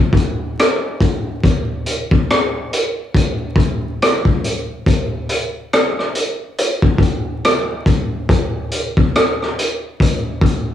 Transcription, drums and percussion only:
0.13 kick
0.17 closed hi-hat
0.59 cross-stick, closed hi-hat
1.01 kick, closed hi-hat
1.44 kick, closed hi-hat
1.86 closed hi-hat
2.11 kick
2.30 cross-stick, closed hi-hat
2.73 closed hi-hat
3.14 kick, closed hi-hat
3.56 kick, closed hi-hat
4.02 cross-stick, closed hi-hat
4.25 kick
4.44 closed hi-hat
4.86 kick, closed hi-hat
5.29 closed hi-hat
5.73 cross-stick, closed hi-hat
5.99 cross-stick
6.15 closed hi-hat
6.58 closed hi-hat
6.82 kick
6.98 kick
7.02 closed hi-hat
7.45 cross-stick, closed hi-hat
7.86 kick, closed hi-hat
8.29 kick, closed hi-hat
8.71 closed hi-hat
8.97 kick
9.15 cross-stick, closed hi-hat
9.42 cross-stick
9.59 closed hi-hat
10.00 kick, closed hi-hat
10.41 kick
10.46 closed hi-hat

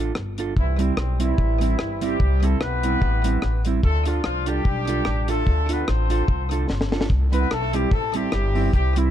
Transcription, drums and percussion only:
0.15 cross-stick
0.38 closed hi-hat
0.57 kick
0.79 closed hi-hat
0.97 cross-stick
1.20 closed hi-hat
1.38 kick
1.61 closed hi-hat
1.79 cross-stick
2.01 closed hi-hat
2.20 kick
2.43 closed hi-hat
2.61 cross-stick
2.83 closed hi-hat
3.02 kick
3.24 closed hi-hat
3.42 cross-stick
3.65 closed hi-hat
3.83 kick
4.05 closed hi-hat
4.24 cross-stick
4.46 closed hi-hat
4.65 kick
4.87 closed hi-hat
5.05 cross-stick
5.28 closed hi-hat
5.47 kick
5.69 closed hi-hat
5.88 cross-stick
6.10 closed hi-hat
6.28 kick
6.51 closed hi-hat
6.70 snare
6.81 snare
6.92 snare
7.01 snare
7.10 kick
7.33 closed hi-hat
7.51 cross-stick
7.73 closed hi-hat
7.91 kick
8.14 closed hi-hat
8.32 cross-stick
8.55 open hi-hat
8.73 kick, hi-hat pedal
8.96 closed hi-hat

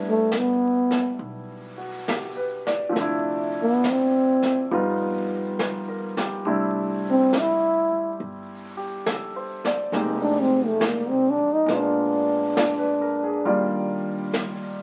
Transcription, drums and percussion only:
0.32 snare, hi-hat pedal
0.91 snare
1.20 brush sweep
2.08 snare, hi-hat pedal
2.67 snare
2.96 brush sweep, snare
3.84 snare, hi-hat pedal
4.42 snare
4.72 brush sweep
5.59 snare, hi-hat pedal
6.17 snare
6.46 brush sweep
7.33 snare, hi-hat pedal
8.19 brush sweep
9.06 snare, hi-hat pedal
9.65 snare
9.93 brush sweep, snare
10.81 snare, hi-hat pedal
11.68 brush sweep, snare
12.57 snare, hi-hat pedal
13.45 brush sweep
14.34 snare, hi-hat pedal

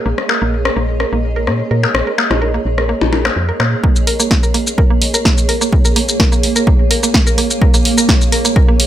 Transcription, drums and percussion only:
0.18 cross-stick
0.29 percussion blips
0.65 cross-stick
1.00 cross-stick
1.47 cross-stick
1.83 percussion blips
1.95 cross-stick
2.18 percussion blips
2.31 cross-stick, percussion blips
2.78 cross-stick
3.01 percussion blips
3.13 percussion blips
3.25 cross-stick, percussion blips
3.60 cross-stick, percussion blips
3.84 kick
3.96 shaker
4.07 open hi-hat
4.20 shaker
4.31 kick, snare
4.43 shaker
4.54 open hi-hat
4.67 shaker
4.78 kick
5.02 open hi-hat
5.14 shaker
5.25 kick, snare
5.38 shaker
5.49 open hi-hat
5.61 shaker
5.73 kick
5.85 shaker
5.96 open hi-hat
6.09 shaker
6.20 kick, snare
6.32 shaker
6.43 open hi-hat
6.56 shaker
6.67 kick
6.91 open hi-hat
7.03 shaker
7.14 kick, snare
7.27 shaker
7.38 open hi-hat
7.50 shaker
7.62 kick
7.74 shaker
7.85 open hi-hat
7.98 shaker
8.09 kick, snare
8.21 shaker
8.32 open hi-hat
8.45 shaker
8.56 kick
8.80 open hi-hat

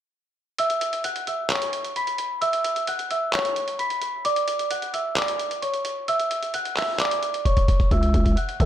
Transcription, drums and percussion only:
0.59 closed hi-hat
0.70 closed hi-hat
0.81 closed hi-hat
0.93 closed hi-hat
1.04 closed hi-hat
1.16 closed hi-hat
1.27 closed hi-hat
1.50 clap, closed hi-hat
1.62 closed hi-hat
1.73 closed hi-hat
1.85 closed hi-hat
1.96 closed hi-hat
2.07 closed hi-hat
2.18 closed hi-hat
2.42 closed hi-hat
2.53 closed hi-hat
2.64 closed hi-hat
2.76 closed hi-hat
2.87 closed hi-hat
2.99 closed hi-hat
3.11 closed hi-hat
3.33 clap, closed hi-hat
3.45 closed hi-hat
3.56 closed hi-hat
3.68 closed hi-hat
3.79 closed hi-hat
3.90 closed hi-hat
4.02 closed hi-hat
4.25 closed hi-hat
4.36 closed hi-hat
4.48 closed hi-hat
4.59 closed hi-hat
4.71 closed hi-hat
4.82 closed hi-hat
4.94 closed hi-hat
5.16 clap, closed hi-hat
5.28 closed hi-hat
5.39 closed hi-hat
5.51 closed hi-hat
5.62 closed hi-hat
5.74 closed hi-hat
5.85 closed hi-hat
6.08 closed hi-hat
6.20 closed hi-hat
6.31 closed hi-hat
6.43 closed hi-hat
6.54 closed hi-hat
6.65 closed hi-hat
6.77 clap, open hi-hat
7.00 clap, closed hi-hat
7.11 closed hi-hat
7.23 closed hi-hat
7.34 closed hi-hat
7.45 kick, closed hi-hat
7.57 kick, closed hi-hat
7.68 kick, closed hi-hat
7.80 kick, closed hi-hat
7.91 kick, closed hi-hat
8.03 closed hi-hat
8.14 kick, closed hi-hat
8.26 kick, closed hi-hat
8.37 closed hi-hat
8.49 closed hi-hat
8.60 kick, closed hi-hat

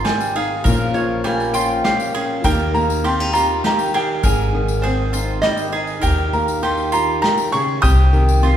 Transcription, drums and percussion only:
0.05 snare, ride
0.21 tambourine
0.36 ride, tambourine
0.65 kick, ride, tambourine
0.81 tambourine
0.95 tambourine
1.24 ride, tambourine
1.40 tambourine
1.54 tambourine
1.85 snare, ride
2.00 tambourine
2.15 ride
2.44 kick, ride, tambourine
2.60 tambourine
2.75 tambourine
2.90 tambourine
3.04 ride, tambourine
3.20 tambourine
3.35 tambourine
3.64 snare, ride
3.79 tambourine
3.94 ride, tambourine
4.23 kick, ride, tambourine
4.68 tambourine
4.83 ride, tambourine
5.14 tambourine
5.28 tambourine
5.43 snare, ride, tambourine
5.57 tambourine
5.74 ride
5.87 tambourine
6.02 kick, ride, tambourine
6.18 tambourine
6.33 tambourine
6.48 tambourine
6.63 ride, tambourine
6.77 tambourine
6.92 tambourine
7.24 snare, ride
7.38 tambourine
7.53 ride, tambourine
7.83 kick, ride, tambourine
7.99 tambourine
8.14 tambourine
8.29 tambourine
8.44 ride, tambourine

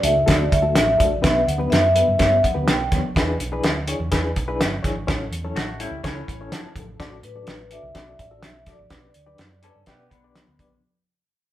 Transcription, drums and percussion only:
0.03 closed hi-hat, muted conga
0.15 low conga
0.28 kick, snare, closed hi-hat
0.52 kick, closed hi-hat
0.75 snare, closed hi-hat, muted conga, high conga
1.00 kick, closed hi-hat, high conga, low conga
1.23 kick, snare, closed hi-hat, low conga
1.49 closed hi-hat, muted conga
1.61 high conga
1.72 snare, closed hi-hat, muted conga
1.96 closed hi-hat
2.07 low conga
2.19 kick, snare, closed hi-hat, muted conga
2.43 kick, closed hi-hat, high conga
2.68 snare, closed hi-hat, muted conga, high conga
2.92 kick, snare, closed hi-hat, muted conga, high conga, low conga
3.15 kick, snare, closed hi-hat, muted conga, low conga
3.40 closed hi-hat
3.53 high conga
3.64 snare, closed hi-hat, muted conga
3.88 closed hi-hat, muted conga
3.99 low conga
4.12 kick, snare, closed hi-hat
4.36 kick, closed hi-hat
4.60 snare, closed hi-hat, high conga
4.84 kick, snare, closed hi-hat, muted conga, high conga, low conga
5.07 kick, snare, closed hi-hat, low conga
5.32 closed hi-hat, muted conga
5.44 high conga
5.56 snare, closed hi-hat
5.80 closed hi-hat, muted conga
5.92 low conga
6.04 kick, snare, closed hi-hat
6.28 kick, closed hi-hat, muted conga
6.52 snare, closed hi-hat, high conga
6.76 kick, closed hi-hat, muted conga, high conga, low conga
7.00 kick, snare, closed hi-hat, muted conga, low conga
7.23 closed hi-hat, muted conga
7.36 high conga
7.47 snare, closed hi-hat
7.71 closed hi-hat, muted conga
7.82 low conga
7.95 kick, snare, closed hi-hat
8.19 kick, closed hi-hat, muted conga
8.43 snare, closed hi-hat, muted conga, high conga
8.66 kick, snare, closed hi-hat, muted conga, high conga, low conga
8.89 kick, snare, closed hi-hat, muted conga, low conga
9.14 closed hi-hat
9.27 high conga
9.38 snare, closed hi-hat, muted conga
9.63 closed hi-hat, muted conga
9.75 low conga
9.86 kick, snare, closed hi-hat
10.11 kick, closed hi-hat
10.35 snare, closed hi-hat, muted conga, high conga
10.59 kick, closed hi-hat, muted conga, high conga, low conga

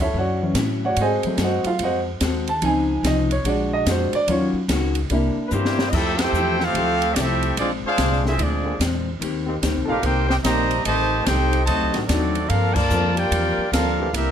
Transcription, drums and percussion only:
0.55 snare, hi-hat pedal, ride
0.96 ride
1.23 ride
1.38 snare, hi-hat pedal, ride
1.64 ride
1.79 ride
2.21 snare, hi-hat pedal, ride
2.47 ride
2.62 ride
3.04 snare, hi-hat pedal, ride
3.31 ride
3.45 ride
3.86 snare, hi-hat pedal, ride
4.13 ride
4.28 ride
4.69 snare, hi-hat pedal, ride
4.95 ride
5.10 ride
5.51 hi-hat pedal
5.65 snare
5.79 snare
5.93 kick, crash
6.19 snare, ride
6.34 hi-hat pedal
6.60 snare
6.75 ride
7.02 ride
7.16 snare, hi-hat pedal, ride
7.43 ride
7.57 ride
7.98 snare, hi-hat pedal, ride
8.12 snare
8.26 snare
8.39 ride
8.81 snare, hi-hat pedal, ride
9.22 ride
9.63 snare, hi-hat pedal, ride
10.03 ride
10.30 snare
10.45 snare, hi-hat pedal, ride
10.71 ride
10.85 ride
11.26 snare, hi-hat pedal, ride
11.53 ride
11.67 ride
11.94 snare, ride
12.09 snare, hi-hat pedal, ride
12.35 ride
12.50 ride
12.76 kick, crash
12.90 hi-hat pedal
13.17 ride
13.32 ride
13.73 snare, hi-hat pedal, ride
14.14 ride

